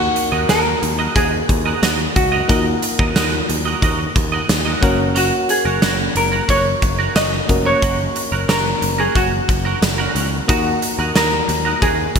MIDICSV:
0, 0, Header, 1, 7, 480
1, 0, Start_track
1, 0, Key_signature, -6, "minor"
1, 0, Tempo, 666667
1, 1794, Time_signature, 4, 2, 24, 8
1, 8779, End_track
2, 0, Start_track
2, 0, Title_t, "Hollow-body jazz guitar"
2, 0, Program_c, 0, 26
2, 0, Note_on_c, 0, 66, 81
2, 357, Note_off_c, 0, 66, 0
2, 360, Note_on_c, 0, 70, 96
2, 834, Note_on_c, 0, 68, 92
2, 851, Note_off_c, 0, 70, 0
2, 1525, Note_off_c, 0, 68, 0
2, 1555, Note_on_c, 0, 66, 77
2, 3446, Note_off_c, 0, 66, 0
2, 3725, Note_on_c, 0, 66, 76
2, 3943, Note_off_c, 0, 66, 0
2, 3962, Note_on_c, 0, 68, 81
2, 4409, Note_off_c, 0, 68, 0
2, 4442, Note_on_c, 0, 70, 83
2, 4678, Note_off_c, 0, 70, 0
2, 4681, Note_on_c, 0, 73, 93
2, 5154, Note_off_c, 0, 73, 0
2, 5157, Note_on_c, 0, 75, 96
2, 5515, Note_off_c, 0, 75, 0
2, 5518, Note_on_c, 0, 73, 96
2, 6114, Note_off_c, 0, 73, 0
2, 6116, Note_on_c, 0, 70, 83
2, 6478, Note_on_c, 0, 68, 81
2, 6486, Note_off_c, 0, 70, 0
2, 6588, Note_off_c, 0, 68, 0
2, 6598, Note_on_c, 0, 66, 70
2, 7287, Note_off_c, 0, 66, 0
2, 7558, Note_on_c, 0, 66, 79
2, 8037, Note_on_c, 0, 70, 97
2, 8050, Note_off_c, 0, 66, 0
2, 8514, Note_on_c, 0, 68, 92
2, 8530, Note_off_c, 0, 70, 0
2, 8779, Note_off_c, 0, 68, 0
2, 8779, End_track
3, 0, Start_track
3, 0, Title_t, "Clean electric guitar"
3, 0, Program_c, 1, 27
3, 230, Note_on_c, 1, 75, 64
3, 238, Note_on_c, 1, 70, 58
3, 244, Note_on_c, 1, 66, 54
3, 336, Note_off_c, 1, 75, 0
3, 340, Note_off_c, 1, 70, 0
3, 341, Note_off_c, 1, 66, 0
3, 349, Note_on_c, 1, 66, 73
3, 358, Note_on_c, 1, 70, 72
3, 364, Note_on_c, 1, 75, 84
3, 463, Note_off_c, 1, 75, 0
3, 473, Note_off_c, 1, 70, 0
3, 484, Note_off_c, 1, 66, 0
3, 711, Note_on_c, 1, 75, 62
3, 719, Note_on_c, 1, 70, 49
3, 725, Note_on_c, 1, 66, 48
3, 816, Note_off_c, 1, 75, 0
3, 820, Note_off_c, 1, 70, 0
3, 823, Note_off_c, 1, 66, 0
3, 832, Note_on_c, 1, 66, 72
3, 838, Note_on_c, 1, 70, 79
3, 845, Note_on_c, 1, 75, 75
3, 945, Note_off_c, 1, 75, 0
3, 954, Note_off_c, 1, 70, 0
3, 965, Note_off_c, 1, 66, 0
3, 1192, Note_on_c, 1, 75, 62
3, 1199, Note_on_c, 1, 70, 56
3, 1205, Note_on_c, 1, 66, 50
3, 1297, Note_off_c, 1, 75, 0
3, 1300, Note_off_c, 1, 70, 0
3, 1301, Note_off_c, 1, 66, 0
3, 1310, Note_on_c, 1, 66, 73
3, 1318, Note_on_c, 1, 70, 84
3, 1324, Note_on_c, 1, 75, 77
3, 1424, Note_off_c, 1, 75, 0
3, 1433, Note_off_c, 1, 70, 0
3, 1445, Note_off_c, 1, 66, 0
3, 1669, Note_on_c, 1, 75, 65
3, 1677, Note_on_c, 1, 70, 54
3, 1683, Note_on_c, 1, 66, 47
3, 1775, Note_off_c, 1, 75, 0
3, 1779, Note_off_c, 1, 70, 0
3, 1783, Note_off_c, 1, 66, 0
3, 1790, Note_on_c, 1, 66, 67
3, 1798, Note_on_c, 1, 70, 67
3, 1803, Note_on_c, 1, 75, 83
3, 1904, Note_off_c, 1, 75, 0
3, 1913, Note_off_c, 1, 70, 0
3, 1924, Note_off_c, 1, 66, 0
3, 2153, Note_on_c, 1, 75, 57
3, 2160, Note_on_c, 1, 70, 55
3, 2167, Note_on_c, 1, 66, 45
3, 2257, Note_off_c, 1, 75, 0
3, 2261, Note_off_c, 1, 70, 0
3, 2265, Note_off_c, 1, 66, 0
3, 2272, Note_on_c, 1, 66, 76
3, 2280, Note_on_c, 1, 70, 77
3, 2286, Note_on_c, 1, 75, 78
3, 2384, Note_off_c, 1, 75, 0
3, 2393, Note_off_c, 1, 70, 0
3, 2406, Note_off_c, 1, 66, 0
3, 2631, Note_on_c, 1, 75, 58
3, 2639, Note_on_c, 1, 70, 53
3, 2646, Note_on_c, 1, 66, 48
3, 2737, Note_off_c, 1, 75, 0
3, 2740, Note_off_c, 1, 70, 0
3, 2741, Note_off_c, 1, 66, 0
3, 2750, Note_on_c, 1, 66, 66
3, 2758, Note_on_c, 1, 70, 74
3, 2764, Note_on_c, 1, 75, 74
3, 2865, Note_off_c, 1, 75, 0
3, 2873, Note_off_c, 1, 70, 0
3, 2885, Note_off_c, 1, 66, 0
3, 3111, Note_on_c, 1, 75, 67
3, 3119, Note_on_c, 1, 70, 52
3, 3126, Note_on_c, 1, 66, 54
3, 3216, Note_off_c, 1, 75, 0
3, 3220, Note_off_c, 1, 70, 0
3, 3224, Note_off_c, 1, 66, 0
3, 3350, Note_on_c, 1, 75, 62
3, 3357, Note_on_c, 1, 70, 54
3, 3364, Note_on_c, 1, 66, 52
3, 3456, Note_off_c, 1, 75, 0
3, 3460, Note_off_c, 1, 70, 0
3, 3463, Note_off_c, 1, 66, 0
3, 3471, Note_on_c, 1, 61, 70
3, 3478, Note_on_c, 1, 66, 74
3, 3484, Note_on_c, 1, 70, 79
3, 3583, Note_off_c, 1, 70, 0
3, 3593, Note_off_c, 1, 66, 0
3, 3605, Note_off_c, 1, 61, 0
3, 3710, Note_on_c, 1, 61, 68
3, 3716, Note_on_c, 1, 66, 75
3, 3723, Note_on_c, 1, 70, 80
3, 3823, Note_off_c, 1, 70, 0
3, 3834, Note_off_c, 1, 66, 0
3, 3844, Note_off_c, 1, 61, 0
3, 4070, Note_on_c, 1, 70, 68
3, 4078, Note_on_c, 1, 66, 57
3, 4084, Note_on_c, 1, 61, 48
3, 4176, Note_off_c, 1, 70, 0
3, 4180, Note_off_c, 1, 66, 0
3, 4181, Note_off_c, 1, 61, 0
3, 4190, Note_on_c, 1, 61, 90
3, 4197, Note_on_c, 1, 66, 93
3, 4204, Note_on_c, 1, 70, 90
3, 4302, Note_off_c, 1, 70, 0
3, 4312, Note_off_c, 1, 66, 0
3, 4324, Note_off_c, 1, 61, 0
3, 4549, Note_on_c, 1, 70, 54
3, 4558, Note_on_c, 1, 66, 50
3, 4563, Note_on_c, 1, 61, 44
3, 4655, Note_off_c, 1, 70, 0
3, 4659, Note_off_c, 1, 61, 0
3, 4660, Note_off_c, 1, 66, 0
3, 4668, Note_on_c, 1, 61, 66
3, 4676, Note_on_c, 1, 66, 69
3, 4683, Note_on_c, 1, 70, 77
3, 4784, Note_off_c, 1, 70, 0
3, 4793, Note_off_c, 1, 66, 0
3, 4803, Note_off_c, 1, 61, 0
3, 5030, Note_on_c, 1, 70, 63
3, 5038, Note_on_c, 1, 66, 50
3, 5044, Note_on_c, 1, 61, 46
3, 5136, Note_off_c, 1, 70, 0
3, 5140, Note_off_c, 1, 66, 0
3, 5141, Note_off_c, 1, 61, 0
3, 5150, Note_on_c, 1, 61, 77
3, 5158, Note_on_c, 1, 66, 80
3, 5164, Note_on_c, 1, 70, 87
3, 5262, Note_off_c, 1, 70, 0
3, 5272, Note_off_c, 1, 66, 0
3, 5285, Note_off_c, 1, 61, 0
3, 5511, Note_on_c, 1, 70, 62
3, 5520, Note_on_c, 1, 66, 53
3, 5526, Note_on_c, 1, 61, 49
3, 5616, Note_off_c, 1, 70, 0
3, 5621, Note_off_c, 1, 66, 0
3, 5622, Note_off_c, 1, 61, 0
3, 5631, Note_on_c, 1, 61, 71
3, 5638, Note_on_c, 1, 66, 73
3, 5645, Note_on_c, 1, 70, 79
3, 5744, Note_off_c, 1, 70, 0
3, 5755, Note_off_c, 1, 66, 0
3, 5765, Note_off_c, 1, 61, 0
3, 5991, Note_on_c, 1, 70, 62
3, 5998, Note_on_c, 1, 66, 52
3, 6005, Note_on_c, 1, 61, 46
3, 6096, Note_off_c, 1, 70, 0
3, 6099, Note_off_c, 1, 61, 0
3, 6100, Note_off_c, 1, 66, 0
3, 6108, Note_on_c, 1, 61, 74
3, 6116, Note_on_c, 1, 66, 72
3, 6122, Note_on_c, 1, 70, 83
3, 6221, Note_off_c, 1, 70, 0
3, 6230, Note_off_c, 1, 66, 0
3, 6244, Note_off_c, 1, 61, 0
3, 6469, Note_on_c, 1, 70, 57
3, 6477, Note_on_c, 1, 66, 49
3, 6482, Note_on_c, 1, 61, 45
3, 6575, Note_off_c, 1, 70, 0
3, 6579, Note_off_c, 1, 66, 0
3, 6580, Note_off_c, 1, 61, 0
3, 6589, Note_on_c, 1, 61, 71
3, 6596, Note_on_c, 1, 66, 81
3, 6603, Note_on_c, 1, 70, 89
3, 6701, Note_off_c, 1, 70, 0
3, 6711, Note_off_c, 1, 66, 0
3, 6724, Note_off_c, 1, 61, 0
3, 6948, Note_on_c, 1, 70, 59
3, 6956, Note_on_c, 1, 66, 49
3, 6962, Note_on_c, 1, 61, 45
3, 7055, Note_off_c, 1, 70, 0
3, 7059, Note_off_c, 1, 66, 0
3, 7060, Note_off_c, 1, 61, 0
3, 7187, Note_on_c, 1, 70, 72
3, 7195, Note_on_c, 1, 66, 68
3, 7202, Note_on_c, 1, 61, 61
3, 7299, Note_off_c, 1, 61, 0
3, 7307, Note_off_c, 1, 66, 0
3, 7308, Note_on_c, 1, 61, 54
3, 7314, Note_off_c, 1, 70, 0
3, 7316, Note_on_c, 1, 66, 59
3, 7322, Note_on_c, 1, 70, 63
3, 7415, Note_off_c, 1, 61, 0
3, 7419, Note_off_c, 1, 66, 0
3, 7420, Note_off_c, 1, 70, 0
3, 7548, Note_on_c, 1, 63, 68
3, 7555, Note_on_c, 1, 66, 74
3, 7562, Note_on_c, 1, 70, 74
3, 7660, Note_off_c, 1, 70, 0
3, 7670, Note_off_c, 1, 66, 0
3, 7684, Note_off_c, 1, 63, 0
3, 7910, Note_on_c, 1, 70, 60
3, 7918, Note_on_c, 1, 66, 50
3, 7924, Note_on_c, 1, 63, 51
3, 8016, Note_off_c, 1, 70, 0
3, 8020, Note_off_c, 1, 66, 0
3, 8021, Note_off_c, 1, 63, 0
3, 8030, Note_on_c, 1, 63, 78
3, 8037, Note_on_c, 1, 66, 73
3, 8044, Note_on_c, 1, 70, 86
3, 8142, Note_off_c, 1, 70, 0
3, 8153, Note_off_c, 1, 66, 0
3, 8165, Note_off_c, 1, 63, 0
3, 8388, Note_on_c, 1, 70, 58
3, 8397, Note_on_c, 1, 66, 51
3, 8403, Note_on_c, 1, 63, 48
3, 8495, Note_off_c, 1, 70, 0
3, 8499, Note_off_c, 1, 63, 0
3, 8499, Note_off_c, 1, 66, 0
3, 8508, Note_on_c, 1, 63, 68
3, 8515, Note_on_c, 1, 66, 71
3, 8521, Note_on_c, 1, 70, 78
3, 8622, Note_off_c, 1, 70, 0
3, 8632, Note_off_c, 1, 66, 0
3, 8644, Note_off_c, 1, 63, 0
3, 8779, End_track
4, 0, Start_track
4, 0, Title_t, "FM electric piano"
4, 0, Program_c, 2, 5
4, 0, Note_on_c, 2, 58, 62
4, 0, Note_on_c, 2, 63, 57
4, 0, Note_on_c, 2, 66, 55
4, 0, Note_on_c, 2, 70, 67
4, 25, Control_c, 2, 64, 127
4, 1761, Note_off_c, 2, 58, 0
4, 1764, Note_off_c, 2, 63, 0
4, 1767, Note_off_c, 2, 66, 0
4, 1770, Note_off_c, 2, 70, 0
4, 1785, Note_on_c, 2, 58, 61
4, 1790, Note_on_c, 2, 63, 58
4, 1796, Note_on_c, 2, 65, 47
4, 1802, Note_on_c, 2, 70, 72
4, 1842, Note_off_c, 2, 65, 0
4, 1843, Note_on_c, 2, 66, 54
4, 3441, Note_off_c, 2, 58, 0
4, 3443, Note_off_c, 2, 63, 0
4, 3449, Note_off_c, 2, 70, 0
4, 3464, Note_on_c, 2, 58, 74
4, 3468, Note_off_c, 2, 66, 0
4, 3470, Note_on_c, 2, 61, 71
4, 3477, Note_on_c, 2, 66, 70
4, 3482, Control_c, 2, 64, 0
4, 3482, Note_on_c, 2, 70, 82
4, 3601, Control_c, 2, 64, 127
4, 5360, Note_off_c, 2, 58, 0
4, 5363, Note_off_c, 2, 61, 0
4, 5367, Note_off_c, 2, 66, 0
4, 5369, Note_off_c, 2, 70, 0
4, 5385, Note_on_c, 2, 58, 63
4, 5390, Note_on_c, 2, 61, 56
4, 5396, Note_on_c, 2, 66, 59
4, 5402, Note_on_c, 2, 70, 73
4, 7281, Note_off_c, 2, 58, 0
4, 7283, Note_off_c, 2, 61, 0
4, 7286, Note_off_c, 2, 66, 0
4, 7289, Note_off_c, 2, 70, 0
4, 7543, Note_on_c, 2, 58, 64
4, 7550, Note_on_c, 2, 63, 57
4, 7555, Note_on_c, 2, 66, 56
4, 7561, Note_on_c, 2, 70, 72
4, 7565, Control_c, 2, 64, 0
4, 7691, Control_c, 2, 64, 127
4, 8779, Note_off_c, 2, 58, 0
4, 8779, Note_off_c, 2, 63, 0
4, 8779, Note_off_c, 2, 66, 0
4, 8779, Note_off_c, 2, 70, 0
4, 8779, End_track
5, 0, Start_track
5, 0, Title_t, "Picked electric bass"
5, 0, Program_c, 3, 34
5, 232, Note_on_c, 3, 39, 91
5, 319, Note_off_c, 3, 39, 0
5, 353, Note_on_c, 3, 39, 87
5, 526, Note_off_c, 3, 39, 0
5, 594, Note_on_c, 3, 39, 86
5, 767, Note_off_c, 3, 39, 0
5, 832, Note_on_c, 3, 39, 93
5, 1006, Note_off_c, 3, 39, 0
5, 1073, Note_on_c, 3, 39, 86
5, 1246, Note_off_c, 3, 39, 0
5, 1314, Note_on_c, 3, 39, 87
5, 1487, Note_off_c, 3, 39, 0
5, 1557, Note_on_c, 3, 37, 77
5, 1729, Note_off_c, 3, 37, 0
5, 1795, Note_on_c, 3, 39, 99
5, 1967, Note_off_c, 3, 39, 0
5, 2153, Note_on_c, 3, 39, 91
5, 2240, Note_off_c, 3, 39, 0
5, 2272, Note_on_c, 3, 39, 85
5, 2446, Note_off_c, 3, 39, 0
5, 2515, Note_on_c, 3, 39, 80
5, 2688, Note_off_c, 3, 39, 0
5, 2751, Note_on_c, 3, 39, 94
5, 2925, Note_off_c, 3, 39, 0
5, 2993, Note_on_c, 3, 39, 91
5, 3166, Note_off_c, 3, 39, 0
5, 3236, Note_on_c, 3, 39, 86
5, 3408, Note_off_c, 3, 39, 0
5, 3474, Note_on_c, 3, 30, 87
5, 3820, Note_off_c, 3, 30, 0
5, 4070, Note_on_c, 3, 30, 92
5, 4158, Note_off_c, 3, 30, 0
5, 4191, Note_on_c, 3, 30, 95
5, 4365, Note_off_c, 3, 30, 0
5, 4430, Note_on_c, 3, 30, 86
5, 4604, Note_off_c, 3, 30, 0
5, 4671, Note_on_c, 3, 30, 96
5, 4845, Note_off_c, 3, 30, 0
5, 4912, Note_on_c, 3, 30, 87
5, 5086, Note_off_c, 3, 30, 0
5, 5151, Note_on_c, 3, 30, 87
5, 5325, Note_off_c, 3, 30, 0
5, 5395, Note_on_c, 3, 29, 80
5, 5567, Note_off_c, 3, 29, 0
5, 5633, Note_on_c, 3, 30, 98
5, 5806, Note_off_c, 3, 30, 0
5, 5990, Note_on_c, 3, 30, 83
5, 6078, Note_off_c, 3, 30, 0
5, 6110, Note_on_c, 3, 30, 97
5, 6284, Note_off_c, 3, 30, 0
5, 6350, Note_on_c, 3, 30, 92
5, 6524, Note_off_c, 3, 30, 0
5, 6590, Note_on_c, 3, 30, 97
5, 6764, Note_off_c, 3, 30, 0
5, 6831, Note_on_c, 3, 30, 85
5, 7005, Note_off_c, 3, 30, 0
5, 7070, Note_on_c, 3, 30, 87
5, 7244, Note_off_c, 3, 30, 0
5, 7309, Note_on_c, 3, 37, 81
5, 7484, Note_off_c, 3, 37, 0
5, 7553, Note_on_c, 3, 39, 91
5, 7726, Note_off_c, 3, 39, 0
5, 7910, Note_on_c, 3, 39, 94
5, 7998, Note_off_c, 3, 39, 0
5, 8030, Note_on_c, 3, 39, 89
5, 8204, Note_off_c, 3, 39, 0
5, 8269, Note_on_c, 3, 39, 96
5, 8444, Note_off_c, 3, 39, 0
5, 8510, Note_on_c, 3, 39, 97
5, 8684, Note_off_c, 3, 39, 0
5, 8751, Note_on_c, 3, 39, 83
5, 8779, Note_off_c, 3, 39, 0
5, 8779, End_track
6, 0, Start_track
6, 0, Title_t, "Muted clean electric guitar strokes"
6, 2, Note_on_c, 9, 29, 33
6, 74, Note_off_c, 9, 29, 0
6, 112, Note_on_c, 9, 29, 32
6, 184, Note_off_c, 9, 29, 0
6, 471, Note_on_c, 9, 29, 44
6, 543, Note_off_c, 9, 29, 0
6, 593, Note_on_c, 9, 29, 34
6, 665, Note_off_c, 9, 29, 0
6, 954, Note_on_c, 9, 29, 35
6, 1026, Note_off_c, 9, 29, 0
6, 1074, Note_on_c, 9, 29, 37
6, 1146, Note_off_c, 9, 29, 0
6, 1433, Note_on_c, 9, 29, 37
6, 1505, Note_off_c, 9, 29, 0
6, 1552, Note_on_c, 9, 29, 33
6, 1624, Note_off_c, 9, 29, 0
6, 1912, Note_on_c, 9, 29, 42
6, 1984, Note_off_c, 9, 29, 0
6, 2033, Note_on_c, 9, 29, 34
6, 2105, Note_off_c, 9, 29, 0
6, 2393, Note_on_c, 9, 29, 46
6, 2465, Note_off_c, 9, 29, 0
6, 2512, Note_on_c, 9, 29, 33
6, 2584, Note_off_c, 9, 29, 0
6, 2873, Note_on_c, 9, 29, 45
6, 2945, Note_off_c, 9, 29, 0
6, 2992, Note_on_c, 9, 29, 41
6, 3064, Note_off_c, 9, 29, 0
6, 3233, Note_on_c, 9, 29, 36
6, 3305, Note_off_c, 9, 29, 0
6, 3592, Note_on_c, 9, 29, 43
6, 3664, Note_off_c, 9, 29, 0
6, 3832, Note_on_c, 9, 29, 40
6, 3904, Note_off_c, 9, 29, 0
6, 3952, Note_on_c, 9, 29, 35
6, 4024, Note_off_c, 9, 29, 0
6, 4311, Note_on_c, 9, 29, 36
6, 4383, Note_off_c, 9, 29, 0
6, 4433, Note_on_c, 9, 29, 38
6, 4505, Note_off_c, 9, 29, 0
6, 4792, Note_on_c, 9, 29, 48
6, 4864, Note_off_c, 9, 29, 0
6, 4911, Note_on_c, 9, 29, 39
6, 4983, Note_off_c, 9, 29, 0
6, 5271, Note_on_c, 9, 29, 38
6, 5343, Note_off_c, 9, 29, 0
6, 5393, Note_on_c, 9, 29, 32
6, 5465, Note_off_c, 9, 29, 0
6, 5753, Note_on_c, 9, 29, 44
6, 5825, Note_off_c, 9, 29, 0
6, 5872, Note_on_c, 9, 29, 33
6, 5944, Note_off_c, 9, 29, 0
6, 6229, Note_on_c, 9, 29, 47
6, 6301, Note_off_c, 9, 29, 0
6, 6351, Note_on_c, 9, 29, 36
6, 6423, Note_off_c, 9, 29, 0
6, 6710, Note_on_c, 9, 29, 41
6, 6782, Note_off_c, 9, 29, 0
6, 6831, Note_on_c, 9, 29, 43
6, 6903, Note_off_c, 9, 29, 0
6, 7068, Note_on_c, 9, 29, 42
6, 7140, Note_off_c, 9, 29, 0
6, 7428, Note_on_c, 9, 29, 40
6, 7500, Note_off_c, 9, 29, 0
6, 7669, Note_on_c, 9, 29, 42
6, 7741, Note_off_c, 9, 29, 0
6, 7792, Note_on_c, 9, 29, 36
6, 7864, Note_off_c, 9, 29, 0
6, 8151, Note_on_c, 9, 29, 49
6, 8223, Note_off_c, 9, 29, 0
6, 8271, Note_on_c, 9, 29, 45
6, 8343, Note_off_c, 9, 29, 0
6, 8631, Note_on_c, 9, 29, 41
6, 8703, Note_off_c, 9, 29, 0
6, 8751, Note_on_c, 9, 29, 45
6, 8779, Note_off_c, 9, 29, 0
6, 8779, End_track
7, 0, Start_track
7, 0, Title_t, "Drums"
7, 115, Note_on_c, 9, 42, 60
7, 187, Note_off_c, 9, 42, 0
7, 354, Note_on_c, 9, 38, 105
7, 355, Note_on_c, 9, 42, 84
7, 426, Note_off_c, 9, 38, 0
7, 427, Note_off_c, 9, 42, 0
7, 596, Note_on_c, 9, 42, 69
7, 668, Note_off_c, 9, 42, 0
7, 833, Note_on_c, 9, 36, 85
7, 836, Note_on_c, 9, 42, 76
7, 905, Note_off_c, 9, 36, 0
7, 908, Note_off_c, 9, 42, 0
7, 1074, Note_on_c, 9, 36, 84
7, 1076, Note_on_c, 9, 42, 70
7, 1146, Note_off_c, 9, 36, 0
7, 1148, Note_off_c, 9, 42, 0
7, 1316, Note_on_c, 9, 42, 87
7, 1317, Note_on_c, 9, 38, 100
7, 1388, Note_off_c, 9, 42, 0
7, 1389, Note_off_c, 9, 38, 0
7, 1555, Note_on_c, 9, 42, 68
7, 1557, Note_on_c, 9, 36, 88
7, 1627, Note_off_c, 9, 42, 0
7, 1629, Note_off_c, 9, 36, 0
7, 1795, Note_on_c, 9, 42, 82
7, 1796, Note_on_c, 9, 36, 99
7, 1867, Note_off_c, 9, 42, 0
7, 1868, Note_off_c, 9, 36, 0
7, 2034, Note_on_c, 9, 42, 62
7, 2106, Note_off_c, 9, 42, 0
7, 2154, Note_on_c, 9, 36, 85
7, 2226, Note_off_c, 9, 36, 0
7, 2274, Note_on_c, 9, 38, 102
7, 2275, Note_on_c, 9, 42, 88
7, 2346, Note_off_c, 9, 38, 0
7, 2347, Note_off_c, 9, 42, 0
7, 2516, Note_on_c, 9, 42, 65
7, 2588, Note_off_c, 9, 42, 0
7, 2753, Note_on_c, 9, 36, 86
7, 2755, Note_on_c, 9, 42, 69
7, 2825, Note_off_c, 9, 36, 0
7, 2827, Note_off_c, 9, 42, 0
7, 2993, Note_on_c, 9, 42, 72
7, 2994, Note_on_c, 9, 36, 86
7, 3065, Note_off_c, 9, 42, 0
7, 3066, Note_off_c, 9, 36, 0
7, 3235, Note_on_c, 9, 42, 89
7, 3236, Note_on_c, 9, 38, 101
7, 3307, Note_off_c, 9, 42, 0
7, 3308, Note_off_c, 9, 38, 0
7, 3475, Note_on_c, 9, 36, 97
7, 3475, Note_on_c, 9, 42, 66
7, 3547, Note_off_c, 9, 36, 0
7, 3547, Note_off_c, 9, 42, 0
7, 3714, Note_on_c, 9, 42, 83
7, 3786, Note_off_c, 9, 42, 0
7, 3954, Note_on_c, 9, 42, 58
7, 4026, Note_off_c, 9, 42, 0
7, 4192, Note_on_c, 9, 38, 107
7, 4193, Note_on_c, 9, 42, 83
7, 4264, Note_off_c, 9, 38, 0
7, 4265, Note_off_c, 9, 42, 0
7, 4433, Note_on_c, 9, 42, 68
7, 4505, Note_off_c, 9, 42, 0
7, 4672, Note_on_c, 9, 36, 82
7, 4674, Note_on_c, 9, 42, 73
7, 4744, Note_off_c, 9, 36, 0
7, 4746, Note_off_c, 9, 42, 0
7, 4913, Note_on_c, 9, 36, 84
7, 4913, Note_on_c, 9, 42, 71
7, 4985, Note_off_c, 9, 36, 0
7, 4985, Note_off_c, 9, 42, 0
7, 5153, Note_on_c, 9, 42, 87
7, 5154, Note_on_c, 9, 38, 104
7, 5225, Note_off_c, 9, 42, 0
7, 5226, Note_off_c, 9, 38, 0
7, 5394, Note_on_c, 9, 42, 68
7, 5395, Note_on_c, 9, 36, 83
7, 5466, Note_off_c, 9, 42, 0
7, 5467, Note_off_c, 9, 36, 0
7, 5633, Note_on_c, 9, 36, 102
7, 5633, Note_on_c, 9, 42, 88
7, 5705, Note_off_c, 9, 36, 0
7, 5705, Note_off_c, 9, 42, 0
7, 5873, Note_on_c, 9, 42, 62
7, 5945, Note_off_c, 9, 42, 0
7, 6113, Note_on_c, 9, 38, 109
7, 6114, Note_on_c, 9, 42, 84
7, 6185, Note_off_c, 9, 38, 0
7, 6186, Note_off_c, 9, 42, 0
7, 6352, Note_on_c, 9, 42, 65
7, 6424, Note_off_c, 9, 42, 0
7, 6591, Note_on_c, 9, 36, 87
7, 6594, Note_on_c, 9, 42, 68
7, 6663, Note_off_c, 9, 36, 0
7, 6666, Note_off_c, 9, 42, 0
7, 6832, Note_on_c, 9, 36, 82
7, 6832, Note_on_c, 9, 42, 70
7, 6904, Note_off_c, 9, 36, 0
7, 6904, Note_off_c, 9, 42, 0
7, 7073, Note_on_c, 9, 42, 88
7, 7074, Note_on_c, 9, 38, 104
7, 7145, Note_off_c, 9, 42, 0
7, 7146, Note_off_c, 9, 38, 0
7, 7313, Note_on_c, 9, 42, 69
7, 7385, Note_off_c, 9, 42, 0
7, 7553, Note_on_c, 9, 36, 104
7, 7553, Note_on_c, 9, 42, 86
7, 7625, Note_off_c, 9, 36, 0
7, 7625, Note_off_c, 9, 42, 0
7, 7792, Note_on_c, 9, 42, 65
7, 7864, Note_off_c, 9, 42, 0
7, 8032, Note_on_c, 9, 38, 103
7, 8033, Note_on_c, 9, 42, 84
7, 8104, Note_off_c, 9, 38, 0
7, 8105, Note_off_c, 9, 42, 0
7, 8272, Note_on_c, 9, 42, 71
7, 8344, Note_off_c, 9, 42, 0
7, 8511, Note_on_c, 9, 36, 85
7, 8512, Note_on_c, 9, 42, 72
7, 8583, Note_off_c, 9, 36, 0
7, 8584, Note_off_c, 9, 42, 0
7, 8752, Note_on_c, 9, 36, 82
7, 8752, Note_on_c, 9, 42, 70
7, 8779, Note_off_c, 9, 36, 0
7, 8779, Note_off_c, 9, 42, 0
7, 8779, End_track
0, 0, End_of_file